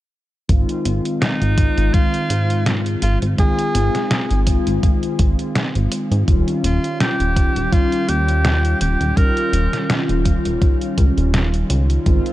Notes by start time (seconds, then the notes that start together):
0.48 G#1 D#3 G#3 C4 F4, kick, closed hi-hat
0.69 closed hi-hat
0.85 G#1, closed hi-hat
1.05 closed hi-hat
1.21 D#4, snare, closed hi-hat
1.42 G#1, closed hi-hat
1.58 kick, closed hi-hat
1.77 G#1, closed hi-hat
1.94 F4, kick, closed hi-hat
2.14 closed hi-hat
2.29 G#2 D#3 G#3 C4 F4, closed hi-hat
2.50 closed hi-hat
2.66 snare, closed hi-hat
2.86 closed hi-hat
3.02 G#1 F4, closed hi-hat
3.22 G#1, closed hi-hat
3.37 D#3 G#3 C4 F4 G#4, kick, closed hi-hat
3.59 closed hi-hat
3.75 G#1, closed hi-hat
3.95 snare, closed hi-hat
4.11 snare, closed hi-hat
4.31 G#1, closed hi-hat
4.47 kick, closed hi-hat
4.67 G#1, closed hi-hat
4.83 kick, closed hi-hat
5.03 closed hi-hat
5.18 G#1 D#3 G#3 C4 F4, kick, closed hi-hat
5.39 closed hi-hat
5.55 snare, closed hi-hat
5.75 G#1, closed hi-hat
5.92 closed hi-hat
6.12 G#2, closed hi-hat
6.26 D#1 D#3 G3 C#4 F4, kick, closed hi-hat
6.48 closed hi-hat
6.64 D#1 F4, closed hi-hat
6.84 closed hi-hat
7.01 G4, snare, closed hi-hat
7.20 D#1, closed hi-hat
7.36 kick, closed hi-hat
7.56 D#1, closed hi-hat
7.72 F4, kick, closed hi-hat
7.92 closed hi-hat
8.07 D#2 D#3 G3 C#4 F4 G4, closed hi-hat
8.28 closed hi-hat
8.45 snare, closed hi-hat
8.65 closed hi-hat
8.81 D#1 G4, closed hi-hat
9.01 D#1, closed hi-hat
9.16 D#3 G3 C#4 F4 A#4, kick, closed hi-hat
9.37 closed hi-hat
9.53 D#1, closed hi-hat
9.73 snare, closed hi-hat
9.90 snare, closed hi-hat
10.09 D#1, closed hi-hat
10.25 kick, closed hi-hat
10.45 D#1, closed hi-hat
10.62 kick, closed hi-hat
10.81 closed hi-hat
10.97 C#2 D#3 G3 C#4 F4, kick, closed hi-hat
11.18 D#1, closed hi-hat
11.34 snare, closed hi-hat
11.54 closed hi-hat
11.70 C#2, closed hi-hat
11.90 closed hi-hat
12.05 G#1 D#3 G#3 C4 F4, kick, closed hi-hat
12.26 closed hi-hat